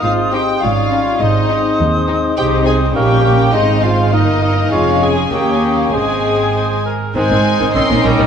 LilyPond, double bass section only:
\new Staff \with { instrumentName = "Double bass section" } { \clef bass \time 2/4 \key aes \major \tempo 4 = 102 aes,,8. r16 aes,,8. r16 | aes,,8. r16 ees,8. r16 | c,4 bes,,4 | aes,,4 g,,4 |
f,,4 ees,4 | aes,,4.~ aes,,16 r16 | aes,,16 aes,,16 r16 aes,,16 bes,,16 bes,,16 bes,,16 bes,,16 | }